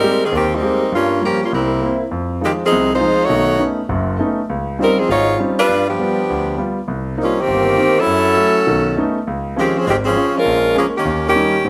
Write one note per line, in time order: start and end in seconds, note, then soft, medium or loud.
0.00 0.21 G3 medium
0.00 0.23 G#3 medium
0.00 0.23 A#3 soft
0.00 0.22 C4 medium
0.00 0.23 C4 soft
0.00 0.21 D#4 medium
0.00 0.23 G4 medium
0.00 0.21 A#4 loud
0.25 0.34 D#3 medium
0.25 0.34 A#3 medium
0.25 0.34 C4 medium
0.25 0.34 G#4 medium
0.32 0.58 D#2 medium
0.32 0.52 A#3 medium
0.32 0.52 C4 medium
0.32 0.52 G4 medium
0.36 0.52 D#3 medium
0.55 0.94 G3 medium
0.55 0.94 A#3 medium
0.55 0.94 C4 medium
0.55 0.94 D#4 loud
0.62 0.82 G#3 medium
0.62 0.82 A#3 soft
0.62 0.82 C4 soft
0.62 0.82 G4 medium
0.92 1.18 G2 medium
0.92 1.21 G3 medium
0.92 1.21 A#3 medium
0.92 1.22 C#4 medium
0.92 1.22 F4 medium
1.21 1.42 F3 medium
1.21 1.41 G3 soft
1.21 1.42 A#3 soft
1.21 1.42 F4 medium
1.21 1.42 G4 medium
1.26 1.43 A#3 medium
1.26 1.43 C#4 medium
1.44 1.53 G3 medium
1.44 1.53 A#3 medium
1.44 1.53 C#4 medium
1.44 1.53 F4 medium
1.52 1.78 C2 medium
1.52 1.99 G3 medium
1.52 1.98 A#3 medium
1.52 1.98 C4 medium
1.52 1.98 E4 medium
1.82 2.02 A#3 soft
1.82 2.02 C4 soft
1.82 2.02 E4 medium
2.11 2.37 F2 medium
2.41 2.61 F3 medium
2.41 2.61 G#3 soft
2.41 2.52 C4 medium
2.41 2.61 D#4 medium
2.41 2.52 G4 medium
2.45 2.53 D#3 medium
2.45 2.53 G#3 medium
2.66 2.91 F3 medium
2.66 2.91 C4 medium
2.66 2.91 D#4 medium
2.66 2.91 G#4 medium
2.72 2.97 C2 medium
2.72 2.97 C3 medium
2.95 3.23 G#3 medium
2.95 3.22 D#4 medium
2.95 3.22 F4 medium
2.95 3.22 C5 loud
3.01 3.21 F3 medium
3.01 3.21 G#3 soft
3.01 3.21 D#4 medium
3.25 3.63 A3 medium
3.25 3.63 D#4 medium
3.25 3.63 F#4 medium
3.25 3.63 C#5 loud
3.29 3.56 B1 medium
3.29 3.56 D#3 medium
3.59 3.79 A3 soft
3.59 3.80 B3 soft
3.59 3.80 C#4 soft
3.59 3.80 D#4 medium
3.89 4.15 F#1 medium
3.89 4.15 F#2 medium
4.19 4.39 A3 medium
4.19 4.39 B3 soft
4.19 4.40 C#4 soft
4.19 4.40 D#4 medium
4.49 4.75 C#2 medium
4.79 4.99 G3 soft
4.79 4.99 C4 soft
4.79 4.98 C4 medium
4.79 4.99 C#4 soft
4.79 4.99 D#4 soft
4.79 4.98 D#4 medium
4.79 4.99 F4 medium
4.79 4.98 A#4 loud
4.83 4.99 G3 medium
4.99 5.10 F3 medium
4.99 5.10 C4 medium
4.99 5.10 D#4 medium
4.99 5.10 G#4 medium
5.09 5.35 G#1 medium
5.09 5.38 G#3 medium
5.09 5.38 D#4 medium
5.09 5.38 F4 loud
5.09 5.38 C#5 loud
5.39 5.59 G3 soft
5.39 5.59 C4 soft
5.39 5.59 C#4 soft
5.39 5.59 D#4 soft
5.39 5.59 F4 medium
5.59 5.87 G3 medium
5.59 5.87 D4 medium
5.59 5.87 F4 loud
5.59 5.86 B4 loud
5.69 5.95 G2 medium
5.90 6.74 F3 medium
5.90 6.74 B3 medium
5.90 6.74 D4 medium
5.90 6.74 G4 medium
5.99 6.19 G3 medium
5.99 6.19 B3 soft
5.99 6.19 F4 medium
6.30 6.55 D2 medium
6.58 6.78 G3 soft
6.58 6.78 B3 soft
6.58 6.78 F4 medium
6.88 7.14 C2 medium
7.17 7.37 A#3 soft
7.17 7.38 C4 soft
7.17 7.38 D#4 medium
7.23 7.38 G3 medium
7.23 7.38 A#3 medium
7.23 7.38 C#4 medium
7.23 7.38 F4 medium
7.40 7.98 D#3 medium
7.40 7.98 A#3 medium
7.40 7.98 C4 medium
7.40 7.98 G4 loud
7.48 7.74 G1 medium
7.77 7.97 A#3 soft
7.77 7.98 C4 soft
7.77 7.98 D#4 medium
7.99 9.17 F#3 loud
7.99 9.17 C#4 loud
7.99 8.69 E4 loud
7.99 9.17 A4 loud
8.06 8.32 F#2 medium
8.37 8.57 F#3 soft
8.37 8.57 A3 soft
8.37 8.57 E4 medium
8.67 8.93 B1 medium
8.67 8.93 D#3 medium
8.97 9.17 A3 medium
8.97 9.17 B3 soft
8.97 9.17 C#4 soft
8.97 9.17 D#4 medium
9.27 9.53 C#2 medium
9.56 9.75 D#3 medium
9.56 9.76 F3 medium
9.56 9.75 G#3 medium
9.56 9.76 C4 soft
9.56 9.75 C4 medium
9.56 9.77 C#4 medium
9.56 9.75 G4 medium
9.78 9.88 F3 medium
9.78 9.87 C4 medium
9.78 9.88 C#4 medium
9.78 9.88 G#4 medium
9.87 10.12 G#1 medium
9.87 9.96 D#3 medium
9.87 9.96 G#3 medium
9.87 9.96 C4 medium
9.87 9.97 G4 medium
10.05 10.33 F3 medium
10.05 10.33 C4 medium
10.05 10.33 C#4 medium
10.05 10.33 G#4 loud
10.16 10.36 F3 medium
10.16 10.36 C4 medium
10.16 10.36 C#4 medium
10.36 10.76 G#3 loud
10.36 10.76 C#4 loud
10.36 10.77 F4 loud
10.36 10.77 A#4 loud
10.46 10.71 A#1 medium
10.75 10.86 F3 medium
10.75 10.95 G#3 medium
10.75 10.95 A#3 soft
10.75 10.96 C#4 medium
10.79 10.87 A#3 medium
10.79 10.87 C#4 medium
10.79 10.86 G#4 medium
10.97 11.27 D#3 medium
10.97 11.27 A#3 medium
10.97 11.27 C#4 medium
10.97 11.27 G4 medium
11.05 11.31 D#2 medium
11.28 11.64 D#3 medium
11.28 11.65 A#3 medium
11.28 11.64 C#4 medium
11.28 11.65 G4 loud
11.35 11.55 G3 medium
11.35 11.55 C#4 soft
11.35 11.55 D#4 medium
11.65 11.70 G#2 medium
11.65 11.70 C4 medium